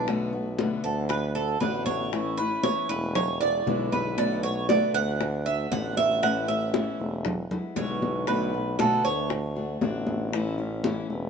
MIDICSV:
0, 0, Header, 1, 6, 480
1, 0, Start_track
1, 0, Key_signature, 3, "major"
1, 0, Tempo, 512821
1, 68, Time_signature, 4, 2, 24, 8
1, 10576, End_track
2, 0, Start_track
2, 0, Title_t, "Cuban tres"
2, 0, Program_c, 0, 25
2, 784, Note_on_c, 0, 69, 73
2, 1017, Note_off_c, 0, 69, 0
2, 1021, Note_on_c, 0, 71, 79
2, 1258, Note_off_c, 0, 71, 0
2, 1263, Note_on_c, 0, 69, 76
2, 1498, Note_off_c, 0, 69, 0
2, 1502, Note_on_c, 0, 71, 72
2, 1734, Note_off_c, 0, 71, 0
2, 1738, Note_on_c, 0, 73, 92
2, 2223, Note_on_c, 0, 71, 86
2, 2427, Note_off_c, 0, 73, 0
2, 2460, Note_off_c, 0, 71, 0
2, 2466, Note_on_c, 0, 73, 92
2, 2701, Note_off_c, 0, 73, 0
2, 2707, Note_on_c, 0, 71, 87
2, 2942, Note_off_c, 0, 71, 0
2, 2952, Note_on_c, 0, 73, 81
2, 3184, Note_off_c, 0, 73, 0
2, 3188, Note_on_c, 0, 74, 94
2, 3673, Note_on_c, 0, 71, 73
2, 3872, Note_off_c, 0, 74, 0
2, 3905, Note_off_c, 0, 71, 0
2, 3911, Note_on_c, 0, 74, 91
2, 4144, Note_off_c, 0, 74, 0
2, 4150, Note_on_c, 0, 73, 92
2, 4383, Note_off_c, 0, 73, 0
2, 4389, Note_on_c, 0, 74, 80
2, 4623, Note_off_c, 0, 74, 0
2, 4628, Note_on_c, 0, 78, 109
2, 5110, Note_on_c, 0, 76, 85
2, 5312, Note_off_c, 0, 78, 0
2, 5343, Note_off_c, 0, 76, 0
2, 5350, Note_on_c, 0, 78, 95
2, 5584, Note_off_c, 0, 78, 0
2, 5590, Note_on_c, 0, 76, 97
2, 5823, Note_off_c, 0, 76, 0
2, 5830, Note_on_c, 0, 78, 93
2, 6063, Note_off_c, 0, 78, 0
2, 6068, Note_on_c, 0, 76, 89
2, 6752, Note_off_c, 0, 76, 0
2, 7267, Note_on_c, 0, 73, 81
2, 7715, Note_off_c, 0, 73, 0
2, 7747, Note_on_c, 0, 71, 76
2, 8195, Note_off_c, 0, 71, 0
2, 8225, Note_on_c, 0, 69, 78
2, 8460, Note_off_c, 0, 69, 0
2, 8467, Note_on_c, 0, 73, 90
2, 8701, Note_off_c, 0, 73, 0
2, 10576, End_track
3, 0, Start_track
3, 0, Title_t, "Steel-string acoustic guitar"
3, 0, Program_c, 1, 25
3, 74, Note_on_c, 1, 47, 73
3, 78, Note_on_c, 1, 50, 71
3, 80, Note_on_c, 1, 57, 80
3, 85, Note_on_c, 1, 59, 85
3, 90, Note_on_c, 1, 66, 85
3, 298, Note_off_c, 1, 66, 0
3, 302, Note_off_c, 1, 47, 0
3, 304, Note_off_c, 1, 50, 0
3, 305, Note_off_c, 1, 57, 0
3, 307, Note_off_c, 1, 59, 0
3, 309, Note_on_c, 1, 66, 49
3, 321, Note_on_c, 1, 59, 45
3, 333, Note_on_c, 1, 57, 42
3, 540, Note_off_c, 1, 66, 0
3, 546, Note_off_c, 1, 57, 0
3, 546, Note_off_c, 1, 59, 0
3, 551, Note_on_c, 1, 47, 69
3, 553, Note_on_c, 1, 50, 72
3, 557, Note_on_c, 1, 57, 77
3, 565, Note_on_c, 1, 59, 76
3, 571, Note_on_c, 1, 66, 69
3, 775, Note_off_c, 1, 66, 0
3, 781, Note_off_c, 1, 47, 0
3, 782, Note_off_c, 1, 50, 0
3, 784, Note_off_c, 1, 57, 0
3, 784, Note_off_c, 1, 59, 0
3, 786, Note_on_c, 1, 66, 51
3, 795, Note_on_c, 1, 59, 41
3, 803, Note_on_c, 1, 57, 36
3, 1018, Note_off_c, 1, 66, 0
3, 1023, Note_off_c, 1, 57, 0
3, 1023, Note_off_c, 1, 59, 0
3, 1269, Note_on_c, 1, 66, 55
3, 1284, Note_on_c, 1, 62, 45
3, 1294, Note_on_c, 1, 57, 42
3, 1500, Note_off_c, 1, 66, 0
3, 1507, Note_off_c, 1, 62, 0
3, 1510, Note_off_c, 1, 57, 0
3, 1515, Note_on_c, 1, 50, 68
3, 1521, Note_on_c, 1, 57, 61
3, 1526, Note_on_c, 1, 62, 71
3, 1532, Note_on_c, 1, 66, 73
3, 1983, Note_off_c, 1, 50, 0
3, 1986, Note_off_c, 1, 57, 0
3, 1989, Note_off_c, 1, 62, 0
3, 1990, Note_on_c, 1, 52, 73
3, 1992, Note_off_c, 1, 66, 0
3, 1998, Note_on_c, 1, 57, 74
3, 2007, Note_on_c, 1, 61, 77
3, 2013, Note_on_c, 1, 64, 90
3, 2221, Note_off_c, 1, 52, 0
3, 2225, Note_off_c, 1, 57, 0
3, 2227, Note_off_c, 1, 64, 0
3, 2229, Note_off_c, 1, 61, 0
3, 2238, Note_on_c, 1, 64, 54
3, 2249, Note_on_c, 1, 61, 45
3, 2260, Note_on_c, 1, 57, 42
3, 2465, Note_off_c, 1, 64, 0
3, 2469, Note_off_c, 1, 57, 0
3, 2470, Note_off_c, 1, 61, 0
3, 2470, Note_on_c, 1, 52, 70
3, 2480, Note_on_c, 1, 57, 69
3, 2486, Note_on_c, 1, 61, 80
3, 2492, Note_on_c, 1, 64, 72
3, 2692, Note_off_c, 1, 64, 0
3, 2701, Note_off_c, 1, 52, 0
3, 2703, Note_on_c, 1, 64, 49
3, 2704, Note_off_c, 1, 61, 0
3, 2706, Note_off_c, 1, 57, 0
3, 2715, Note_on_c, 1, 61, 43
3, 2723, Note_on_c, 1, 57, 40
3, 2938, Note_off_c, 1, 64, 0
3, 2943, Note_off_c, 1, 61, 0
3, 2947, Note_off_c, 1, 57, 0
3, 3180, Note_on_c, 1, 64, 52
3, 3196, Note_on_c, 1, 59, 48
3, 3205, Note_on_c, 1, 56, 41
3, 3416, Note_off_c, 1, 64, 0
3, 3424, Note_off_c, 1, 59, 0
3, 3425, Note_off_c, 1, 56, 0
3, 3425, Note_on_c, 1, 47, 69
3, 3434, Note_on_c, 1, 50, 72
3, 3436, Note_on_c, 1, 56, 71
3, 3445, Note_on_c, 1, 59, 73
3, 3447, Note_on_c, 1, 64, 75
3, 3891, Note_off_c, 1, 47, 0
3, 3898, Note_off_c, 1, 50, 0
3, 3902, Note_on_c, 1, 47, 65
3, 3904, Note_off_c, 1, 56, 0
3, 3905, Note_off_c, 1, 59, 0
3, 3910, Note_off_c, 1, 64, 0
3, 3910, Note_on_c, 1, 50, 76
3, 3913, Note_on_c, 1, 57, 81
3, 3917, Note_on_c, 1, 59, 81
3, 3919, Note_on_c, 1, 66, 74
3, 4137, Note_off_c, 1, 47, 0
3, 4137, Note_off_c, 1, 66, 0
3, 4141, Note_off_c, 1, 50, 0
3, 4142, Note_off_c, 1, 57, 0
3, 4144, Note_off_c, 1, 59, 0
3, 4148, Note_on_c, 1, 66, 47
3, 4160, Note_on_c, 1, 59, 46
3, 4170, Note_on_c, 1, 57, 39
3, 4380, Note_off_c, 1, 66, 0
3, 4386, Note_off_c, 1, 57, 0
3, 4386, Note_off_c, 1, 59, 0
3, 4388, Note_on_c, 1, 47, 70
3, 4393, Note_on_c, 1, 50, 67
3, 4397, Note_on_c, 1, 57, 74
3, 4402, Note_on_c, 1, 59, 74
3, 4407, Note_on_c, 1, 66, 78
3, 4620, Note_off_c, 1, 47, 0
3, 4620, Note_off_c, 1, 66, 0
3, 4623, Note_off_c, 1, 50, 0
3, 4625, Note_off_c, 1, 57, 0
3, 4627, Note_off_c, 1, 59, 0
3, 4632, Note_on_c, 1, 66, 43
3, 4642, Note_on_c, 1, 59, 47
3, 4653, Note_on_c, 1, 57, 39
3, 4862, Note_off_c, 1, 66, 0
3, 4864, Note_off_c, 1, 57, 0
3, 4867, Note_off_c, 1, 59, 0
3, 5104, Note_on_c, 1, 66, 57
3, 5117, Note_on_c, 1, 62, 47
3, 5128, Note_on_c, 1, 57, 45
3, 5338, Note_off_c, 1, 66, 0
3, 5344, Note_off_c, 1, 62, 0
3, 5348, Note_off_c, 1, 57, 0
3, 5351, Note_on_c, 1, 50, 59
3, 5359, Note_on_c, 1, 57, 72
3, 5366, Note_on_c, 1, 62, 71
3, 5372, Note_on_c, 1, 66, 82
3, 5821, Note_off_c, 1, 50, 0
3, 5823, Note_off_c, 1, 57, 0
3, 5826, Note_on_c, 1, 52, 73
3, 5829, Note_off_c, 1, 62, 0
3, 5832, Note_off_c, 1, 66, 0
3, 5834, Note_on_c, 1, 57, 74
3, 5841, Note_on_c, 1, 61, 77
3, 5847, Note_on_c, 1, 64, 91
3, 6059, Note_off_c, 1, 52, 0
3, 6060, Note_off_c, 1, 64, 0
3, 6063, Note_off_c, 1, 57, 0
3, 6066, Note_off_c, 1, 61, 0
3, 6071, Note_on_c, 1, 64, 55
3, 6081, Note_on_c, 1, 61, 44
3, 6088, Note_on_c, 1, 57, 42
3, 6302, Note_off_c, 1, 64, 0
3, 6304, Note_off_c, 1, 57, 0
3, 6306, Note_off_c, 1, 61, 0
3, 6309, Note_on_c, 1, 52, 72
3, 6315, Note_on_c, 1, 57, 74
3, 6319, Note_on_c, 1, 61, 78
3, 6329, Note_on_c, 1, 64, 77
3, 6538, Note_off_c, 1, 64, 0
3, 6540, Note_off_c, 1, 52, 0
3, 6543, Note_off_c, 1, 57, 0
3, 6545, Note_off_c, 1, 61, 0
3, 6549, Note_on_c, 1, 64, 45
3, 6563, Note_on_c, 1, 61, 41
3, 6570, Note_on_c, 1, 57, 37
3, 6780, Note_off_c, 1, 64, 0
3, 6787, Note_off_c, 1, 61, 0
3, 6788, Note_off_c, 1, 57, 0
3, 7028, Note_on_c, 1, 64, 54
3, 7040, Note_on_c, 1, 59, 45
3, 7049, Note_on_c, 1, 56, 44
3, 7260, Note_off_c, 1, 64, 0
3, 7264, Note_off_c, 1, 56, 0
3, 7265, Note_off_c, 1, 59, 0
3, 7265, Note_on_c, 1, 47, 63
3, 7270, Note_on_c, 1, 50, 67
3, 7275, Note_on_c, 1, 56, 66
3, 7279, Note_on_c, 1, 59, 74
3, 7284, Note_on_c, 1, 64, 69
3, 7738, Note_off_c, 1, 47, 0
3, 7740, Note_off_c, 1, 50, 0
3, 7743, Note_off_c, 1, 56, 0
3, 7745, Note_off_c, 1, 59, 0
3, 7747, Note_off_c, 1, 64, 0
3, 7750, Note_on_c, 1, 47, 73
3, 7754, Note_on_c, 1, 50, 69
3, 7758, Note_on_c, 1, 57, 71
3, 7765, Note_on_c, 1, 59, 74
3, 7768, Note_on_c, 1, 66, 77
3, 7978, Note_off_c, 1, 66, 0
3, 7980, Note_off_c, 1, 47, 0
3, 7982, Note_off_c, 1, 50, 0
3, 7984, Note_off_c, 1, 57, 0
3, 7988, Note_off_c, 1, 59, 0
3, 7989, Note_on_c, 1, 66, 48
3, 8003, Note_on_c, 1, 59, 43
3, 8009, Note_on_c, 1, 57, 44
3, 8220, Note_off_c, 1, 66, 0
3, 8227, Note_off_c, 1, 59, 0
3, 8229, Note_off_c, 1, 57, 0
3, 8232, Note_on_c, 1, 47, 74
3, 8239, Note_on_c, 1, 50, 76
3, 8244, Note_on_c, 1, 57, 81
3, 8248, Note_on_c, 1, 59, 80
3, 8254, Note_on_c, 1, 66, 88
3, 8460, Note_off_c, 1, 66, 0
3, 8461, Note_off_c, 1, 47, 0
3, 8464, Note_off_c, 1, 50, 0
3, 8467, Note_off_c, 1, 57, 0
3, 8469, Note_off_c, 1, 59, 0
3, 8472, Note_on_c, 1, 66, 46
3, 8480, Note_on_c, 1, 59, 43
3, 8487, Note_on_c, 1, 57, 38
3, 8701, Note_off_c, 1, 66, 0
3, 8705, Note_off_c, 1, 59, 0
3, 8706, Note_off_c, 1, 57, 0
3, 8948, Note_on_c, 1, 66, 46
3, 8958, Note_on_c, 1, 62, 48
3, 8966, Note_on_c, 1, 57, 42
3, 9179, Note_off_c, 1, 66, 0
3, 9184, Note_off_c, 1, 57, 0
3, 9184, Note_off_c, 1, 62, 0
3, 9184, Note_on_c, 1, 50, 66
3, 9195, Note_on_c, 1, 57, 70
3, 9197, Note_on_c, 1, 62, 71
3, 9205, Note_on_c, 1, 66, 78
3, 9656, Note_off_c, 1, 50, 0
3, 9662, Note_off_c, 1, 57, 0
3, 9663, Note_off_c, 1, 62, 0
3, 9667, Note_off_c, 1, 66, 0
3, 9667, Note_on_c, 1, 52, 75
3, 9674, Note_on_c, 1, 57, 71
3, 9677, Note_on_c, 1, 61, 75
3, 9686, Note_on_c, 1, 64, 84
3, 9889, Note_off_c, 1, 64, 0
3, 9898, Note_off_c, 1, 52, 0
3, 9900, Note_on_c, 1, 64, 50
3, 9901, Note_off_c, 1, 57, 0
3, 9903, Note_off_c, 1, 61, 0
3, 9916, Note_on_c, 1, 61, 44
3, 9922, Note_on_c, 1, 57, 37
3, 10134, Note_off_c, 1, 64, 0
3, 10138, Note_off_c, 1, 57, 0
3, 10142, Note_off_c, 1, 61, 0
3, 10143, Note_on_c, 1, 52, 78
3, 10150, Note_on_c, 1, 57, 72
3, 10162, Note_on_c, 1, 61, 77
3, 10166, Note_on_c, 1, 64, 85
3, 10372, Note_off_c, 1, 64, 0
3, 10375, Note_off_c, 1, 52, 0
3, 10379, Note_off_c, 1, 57, 0
3, 10383, Note_on_c, 1, 64, 51
3, 10385, Note_off_c, 1, 61, 0
3, 10396, Note_on_c, 1, 61, 42
3, 10405, Note_on_c, 1, 57, 40
3, 10576, Note_off_c, 1, 57, 0
3, 10576, Note_off_c, 1, 61, 0
3, 10576, Note_off_c, 1, 64, 0
3, 10576, End_track
4, 0, Start_track
4, 0, Title_t, "Tuba"
4, 0, Program_c, 2, 58
4, 0, Note_on_c, 2, 35, 78
4, 725, Note_off_c, 2, 35, 0
4, 784, Note_on_c, 2, 38, 96
4, 1470, Note_off_c, 2, 38, 0
4, 1505, Note_on_c, 2, 33, 78
4, 2394, Note_off_c, 2, 33, 0
4, 2707, Note_on_c, 2, 28, 96
4, 3392, Note_off_c, 2, 28, 0
4, 3426, Note_on_c, 2, 35, 90
4, 4568, Note_off_c, 2, 35, 0
4, 4625, Note_on_c, 2, 38, 98
4, 5311, Note_off_c, 2, 38, 0
4, 5346, Note_on_c, 2, 33, 86
4, 6487, Note_off_c, 2, 33, 0
4, 6544, Note_on_c, 2, 28, 92
4, 6981, Note_off_c, 2, 28, 0
4, 7263, Note_on_c, 2, 35, 86
4, 8404, Note_off_c, 2, 35, 0
4, 8461, Note_on_c, 2, 38, 91
4, 9147, Note_off_c, 2, 38, 0
4, 9183, Note_on_c, 2, 33, 85
4, 10323, Note_off_c, 2, 33, 0
4, 10379, Note_on_c, 2, 28, 98
4, 10576, Note_off_c, 2, 28, 0
4, 10576, End_track
5, 0, Start_track
5, 0, Title_t, "Muted steel-string acoustic guitar strokes"
5, 1033, Note_on_c, 9, 29, 62
5, 1127, Note_off_c, 9, 29, 0
5, 2950, Note_on_c, 9, 29, 62
5, 3043, Note_off_c, 9, 29, 0
5, 4868, Note_on_c, 9, 29, 65
5, 4962, Note_off_c, 9, 29, 0
5, 6790, Note_on_c, 9, 29, 60
5, 6883, Note_off_c, 9, 29, 0
5, 8715, Note_on_c, 9, 29, 60
5, 8808, Note_off_c, 9, 29, 0
5, 10576, End_track
6, 0, Start_track
6, 0, Title_t, "Drums"
6, 69, Note_on_c, 9, 63, 33
6, 73, Note_on_c, 9, 60, 68
6, 162, Note_off_c, 9, 63, 0
6, 167, Note_off_c, 9, 60, 0
6, 307, Note_on_c, 9, 63, 34
6, 309, Note_on_c, 9, 60, 35
6, 401, Note_off_c, 9, 63, 0
6, 402, Note_off_c, 9, 60, 0
6, 548, Note_on_c, 9, 63, 93
6, 550, Note_on_c, 9, 60, 58
6, 642, Note_off_c, 9, 63, 0
6, 644, Note_off_c, 9, 60, 0
6, 789, Note_on_c, 9, 63, 34
6, 883, Note_off_c, 9, 63, 0
6, 1029, Note_on_c, 9, 60, 64
6, 1031, Note_on_c, 9, 63, 33
6, 1123, Note_off_c, 9, 60, 0
6, 1124, Note_off_c, 9, 63, 0
6, 1266, Note_on_c, 9, 63, 31
6, 1275, Note_on_c, 9, 60, 34
6, 1359, Note_off_c, 9, 63, 0
6, 1368, Note_off_c, 9, 60, 0
6, 1508, Note_on_c, 9, 63, 86
6, 1516, Note_on_c, 9, 60, 37
6, 1516, Note_on_c, 9, 61, 87
6, 1602, Note_off_c, 9, 63, 0
6, 1610, Note_off_c, 9, 60, 0
6, 1610, Note_off_c, 9, 61, 0
6, 1746, Note_on_c, 9, 63, 92
6, 1748, Note_on_c, 9, 60, 32
6, 1840, Note_off_c, 9, 63, 0
6, 1841, Note_off_c, 9, 60, 0
6, 1988, Note_on_c, 9, 63, 34
6, 1993, Note_on_c, 9, 60, 66
6, 2082, Note_off_c, 9, 63, 0
6, 2086, Note_off_c, 9, 60, 0
6, 2228, Note_on_c, 9, 63, 33
6, 2230, Note_on_c, 9, 60, 34
6, 2322, Note_off_c, 9, 63, 0
6, 2324, Note_off_c, 9, 60, 0
6, 2466, Note_on_c, 9, 63, 93
6, 2468, Note_on_c, 9, 60, 60
6, 2560, Note_off_c, 9, 63, 0
6, 2561, Note_off_c, 9, 60, 0
6, 2712, Note_on_c, 9, 63, 32
6, 2805, Note_off_c, 9, 63, 0
6, 2952, Note_on_c, 9, 60, 67
6, 2953, Note_on_c, 9, 63, 34
6, 2953, Note_on_c, 9, 64, 77
6, 3046, Note_off_c, 9, 60, 0
6, 3046, Note_off_c, 9, 63, 0
6, 3046, Note_off_c, 9, 64, 0
6, 3194, Note_on_c, 9, 63, 34
6, 3195, Note_on_c, 9, 60, 35
6, 3288, Note_off_c, 9, 63, 0
6, 3289, Note_off_c, 9, 60, 0
6, 3436, Note_on_c, 9, 63, 83
6, 3439, Note_on_c, 9, 60, 35
6, 3439, Note_on_c, 9, 61, 83
6, 3530, Note_off_c, 9, 63, 0
6, 3533, Note_off_c, 9, 60, 0
6, 3533, Note_off_c, 9, 61, 0
6, 3677, Note_on_c, 9, 60, 34
6, 3678, Note_on_c, 9, 63, 89
6, 3770, Note_off_c, 9, 60, 0
6, 3771, Note_off_c, 9, 63, 0
6, 3915, Note_on_c, 9, 60, 66
6, 3920, Note_on_c, 9, 63, 38
6, 4008, Note_off_c, 9, 60, 0
6, 4014, Note_off_c, 9, 63, 0
6, 4153, Note_on_c, 9, 60, 35
6, 4156, Note_on_c, 9, 63, 33
6, 4246, Note_off_c, 9, 60, 0
6, 4249, Note_off_c, 9, 63, 0
6, 4390, Note_on_c, 9, 60, 58
6, 4398, Note_on_c, 9, 63, 93
6, 4483, Note_off_c, 9, 60, 0
6, 4491, Note_off_c, 9, 63, 0
6, 4636, Note_on_c, 9, 63, 34
6, 4730, Note_off_c, 9, 63, 0
6, 4873, Note_on_c, 9, 60, 70
6, 4875, Note_on_c, 9, 63, 32
6, 4967, Note_off_c, 9, 60, 0
6, 4968, Note_off_c, 9, 63, 0
6, 5113, Note_on_c, 9, 63, 34
6, 5114, Note_on_c, 9, 60, 34
6, 5206, Note_off_c, 9, 63, 0
6, 5208, Note_off_c, 9, 60, 0
6, 5352, Note_on_c, 9, 63, 83
6, 5356, Note_on_c, 9, 60, 35
6, 5356, Note_on_c, 9, 61, 86
6, 5446, Note_off_c, 9, 63, 0
6, 5450, Note_off_c, 9, 60, 0
6, 5450, Note_off_c, 9, 61, 0
6, 5592, Note_on_c, 9, 63, 86
6, 5597, Note_on_c, 9, 60, 34
6, 5686, Note_off_c, 9, 63, 0
6, 5691, Note_off_c, 9, 60, 0
6, 5832, Note_on_c, 9, 63, 36
6, 5834, Note_on_c, 9, 60, 69
6, 5926, Note_off_c, 9, 63, 0
6, 5928, Note_off_c, 9, 60, 0
6, 6068, Note_on_c, 9, 60, 34
6, 6074, Note_on_c, 9, 63, 34
6, 6162, Note_off_c, 9, 60, 0
6, 6167, Note_off_c, 9, 63, 0
6, 6307, Note_on_c, 9, 60, 61
6, 6309, Note_on_c, 9, 63, 92
6, 6400, Note_off_c, 9, 60, 0
6, 6402, Note_off_c, 9, 63, 0
6, 6557, Note_on_c, 9, 63, 36
6, 6650, Note_off_c, 9, 63, 0
6, 6784, Note_on_c, 9, 60, 72
6, 6794, Note_on_c, 9, 63, 34
6, 6794, Note_on_c, 9, 64, 73
6, 6877, Note_off_c, 9, 60, 0
6, 6888, Note_off_c, 9, 63, 0
6, 6888, Note_off_c, 9, 64, 0
6, 7028, Note_on_c, 9, 60, 33
6, 7031, Note_on_c, 9, 63, 34
6, 7031, Note_on_c, 9, 64, 71
6, 7121, Note_off_c, 9, 60, 0
6, 7125, Note_off_c, 9, 63, 0
6, 7125, Note_off_c, 9, 64, 0
6, 7265, Note_on_c, 9, 60, 36
6, 7265, Note_on_c, 9, 61, 83
6, 7273, Note_on_c, 9, 63, 85
6, 7358, Note_off_c, 9, 60, 0
6, 7358, Note_off_c, 9, 61, 0
6, 7367, Note_off_c, 9, 63, 0
6, 7506, Note_on_c, 9, 60, 35
6, 7511, Note_on_c, 9, 63, 78
6, 7600, Note_off_c, 9, 60, 0
6, 7605, Note_off_c, 9, 63, 0
6, 7743, Note_on_c, 9, 60, 66
6, 7756, Note_on_c, 9, 63, 36
6, 7837, Note_off_c, 9, 60, 0
6, 7850, Note_off_c, 9, 63, 0
6, 7986, Note_on_c, 9, 60, 36
6, 7998, Note_on_c, 9, 63, 34
6, 8080, Note_off_c, 9, 60, 0
6, 8092, Note_off_c, 9, 63, 0
6, 8227, Note_on_c, 9, 60, 62
6, 8234, Note_on_c, 9, 63, 96
6, 8321, Note_off_c, 9, 60, 0
6, 8327, Note_off_c, 9, 63, 0
6, 8470, Note_on_c, 9, 63, 36
6, 8563, Note_off_c, 9, 63, 0
6, 8707, Note_on_c, 9, 60, 69
6, 8709, Note_on_c, 9, 63, 33
6, 8801, Note_off_c, 9, 60, 0
6, 8802, Note_off_c, 9, 63, 0
6, 8945, Note_on_c, 9, 63, 33
6, 8954, Note_on_c, 9, 60, 35
6, 9039, Note_off_c, 9, 63, 0
6, 9047, Note_off_c, 9, 60, 0
6, 9185, Note_on_c, 9, 63, 92
6, 9190, Note_on_c, 9, 60, 35
6, 9190, Note_on_c, 9, 61, 89
6, 9279, Note_off_c, 9, 63, 0
6, 9284, Note_off_c, 9, 60, 0
6, 9284, Note_off_c, 9, 61, 0
6, 9422, Note_on_c, 9, 63, 84
6, 9434, Note_on_c, 9, 60, 34
6, 9516, Note_off_c, 9, 63, 0
6, 9528, Note_off_c, 9, 60, 0
6, 9664, Note_on_c, 9, 63, 39
6, 9673, Note_on_c, 9, 60, 73
6, 9758, Note_off_c, 9, 63, 0
6, 9766, Note_off_c, 9, 60, 0
6, 9903, Note_on_c, 9, 63, 33
6, 9912, Note_on_c, 9, 60, 35
6, 9997, Note_off_c, 9, 63, 0
6, 10006, Note_off_c, 9, 60, 0
6, 10147, Note_on_c, 9, 63, 103
6, 10151, Note_on_c, 9, 60, 60
6, 10240, Note_off_c, 9, 63, 0
6, 10245, Note_off_c, 9, 60, 0
6, 10389, Note_on_c, 9, 63, 37
6, 10483, Note_off_c, 9, 63, 0
6, 10576, End_track
0, 0, End_of_file